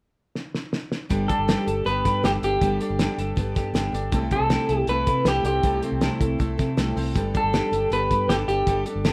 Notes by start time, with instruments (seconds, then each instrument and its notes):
0.35 snare
0.55 snare
0.73 snare
0.92 snare
1.09 fingered electric bass G1, steel-string acoustic guitar G3 B3 D4 G4 A4, kick, closed hi-hat
1.29 steel-string acoustic guitar D4 G4 A4, kick, closed hi-hat
1.39 fingered electric bass G1
1.48 steel-string acoustic guitar G3 B3 D4 G4 A4, snare, closed hi-hat
1.66 fingered electric bass G1, steel-string acoustic guitar D4 G4 A4, closed hi-hat
1.85 fingered electric bass G1, steel-string acoustic guitar B3 D4 G4 A4, clean electric guitar B4, closed hi-hat
2.04 fingered electric bass G2, steel-string acoustic guitar D4 G4 A4, kick, snare, closed hi-hat
2.23 fingered electric bass G1, steel-string acoustic guitar G3 B3 D4 G4 A4, snare, closed hi-hat
2.42 fingered electric bass G1, steel-string acoustic guitar D4 G4 A4, closed hi-hat
2.61 fingered electric bass G1, steel-string acoustic guitar G3 B3 D4 G4 A4, kick, closed hi-hat
2.80 steel-string acoustic guitar D4 G4 A4, closed hi-hat
2.90 fingered electric bass G1
2.99 steel-string acoustic guitar G3 B3 D4 G4 A4, snare, closed hi-hat
3.18 fingered electric bass G1, steel-string acoustic guitar D4 G4 A4, closed hi-hat
3.36 fingered electric bass G1, steel-string acoustic guitar B3 D4 G4 A4, kick, closed hi-hat
3.55 fingered electric bass G2, steel-string acoustic guitar D4 G4 A4, kick, snare, closed hi-hat
3.73 fingered electric bass G1, steel-string acoustic guitar G3 B3 D4 G4 A4, snare, closed hi-hat
3.92 fingered electric bass G1, steel-string acoustic guitar D4 G4 A4, closed hi-hat
4.12 fingered electric bass C2, steel-string acoustic guitar C3 G3 A3 C4 E4 A4, kick, closed hi-hat
4.31 steel-string acoustic guitar A3 C4 E4 A4, kick, closed hi-hat
4.40 fingered electric bass C2
4.50 steel-string acoustic guitar C3 G3 A3 C4 E4 A4, snare, closed hi-hat
4.69 fingered electric bass C2, steel-string acoustic guitar A3 C4 E4 A4, closed hi-hat
4.77 clean electric guitar G4
4.87 fingered electric bass C2, steel-string acoustic guitar A3 C4 E4 A4, clean electric guitar B4, closed hi-hat
5.06 fingered electric bass C3, steel-string acoustic guitar A3 C4 E4 A4, kick, closed hi-hat
5.25 fingered electric bass C2, steel-string acoustic guitar C3 G3 A3 C4 E4 A4, clean electric guitar G4, snare, closed hi-hat
5.44 fingered electric bass C2, steel-string acoustic guitar A3 C4 E4 A4, clean electric guitar G4, closed hi-hat
5.63 fingered electric bass C2, steel-string acoustic guitar C3 G3 A3 C4 E4 A4, kick, closed hi-hat
5.82 steel-string acoustic guitar A3 C4 E4 A4, closed hi-hat
5.92 fingered electric bass C2
6.01 steel-string acoustic guitar C3 G3 A3 C4 E4 A4, snare, closed hi-hat
6.20 fingered electric bass C2, steel-string acoustic guitar A3 C4 E4 A4, kick, closed hi-hat
6.39 fingered electric bass C2, steel-string acoustic guitar A3 C4 E4 A4, kick, closed hi-hat
6.58 fingered electric bass C3, steel-string acoustic guitar A3 C4 E4 A4, kick, snare, closed hi-hat
6.77 fingered electric bass C2, steel-string acoustic guitar C3 G3 A3 C4 E4 A4, snare, closed hi-hat
6.96 fingered electric bass C2, steel-string acoustic guitar A3 C4 E4 A4, open hi-hat
7.15 fingered electric bass G1, steel-string acoustic guitar G3 B3 D4 G4 A4, kick, closed hi-hat
7.34 steel-string acoustic guitar D4 G4 A4, kick, closed hi-hat
7.44 fingered electric bass G1
7.53 steel-string acoustic guitar G3 B3 D4 G4 A4, snare, closed hi-hat
7.71 fingered electric bass G1, steel-string acoustic guitar D4 G4 A4, closed hi-hat
7.90 fingered electric bass G1, steel-string acoustic guitar B3 D4 G4 A4, clean electric guitar B4, closed hi-hat
8.09 fingered electric bass G2, steel-string acoustic guitar D4 G4 A4, kick, closed hi-hat
8.28 fingered electric bass G1, steel-string acoustic guitar G3 B3 D4 G4 A4, snare, closed hi-hat
8.47 fingered electric bass G1, steel-string acoustic guitar D4 G4 A4, closed hi-hat
8.67 fingered electric bass G1, steel-string acoustic guitar G3 B3 D4 G4 A4, kick, closed hi-hat
8.86 steel-string acoustic guitar D4 G4 A4, closed hi-hat
8.95 fingered electric bass G1
9.05 steel-string acoustic guitar G3 B3 D4 G4 A4, snare, closed hi-hat